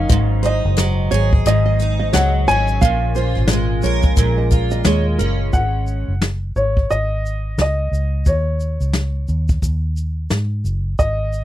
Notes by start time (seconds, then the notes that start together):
Already playing: D#3 F#3 C#4 D#4 A#4 F5
0.09 G#1 G#2 D#5, kick, shaker
0.43 D#4 C5 D#5, shaker
0.65 F#1
0.77 F#3, snare, shaker
1.11 G#1 G#4 C#5, shaker
1.33 kick
1.46 G#1 G#2 D#5, shaker
1.66 D#5
1.80 D#4, shaker
1.99 D#5
2.13 C#2 F#3 C#5 F#5, snare, shaker
2.48 G#1 C#4 C#5 G#5, shaker
2.68 shaker
2.81 A#1 A#2 F5, kick, shaker
3.15 F4 C5, shaker
3.35 G#1, snare
3.48 G#3, snare, shaker
3.82 A#1 A#4 C#5, shaker
4.02 kick, shaker
4.16 A#1 A#2, kick, shaker
4.38 D#5
4.51 F4, kick, shaker
4.71 D#5, shaker
4.84 D#2 G#3 C#5, snare, shaker
5.19 F#1 C#4 A#4, shaker
5.53 G#1 F#5, kick, shaker
5.87 shaker
6.08 F#1
6.22 snare, shaker
6.56 G#1 C#5, shaker
6.77 kick
6.91 G#1 D#5, shaker
7.26 shaker
7.58 C#2 D#5, snare, shaker
7.92 C#2, shaker
8.26 D#2 C#5, kick, shaker
8.60 shaker
8.80 C#2, shaker
8.93 snare, shaker
9.28 D#2, shaker
9.48 kick, shaker
9.62 D#2, kick, shaker
9.97 shaker
10.30 G#2, snare, shaker
10.64 F#1, shaker
10.99 G#1 D#5, kick, shaker
11.33 shaker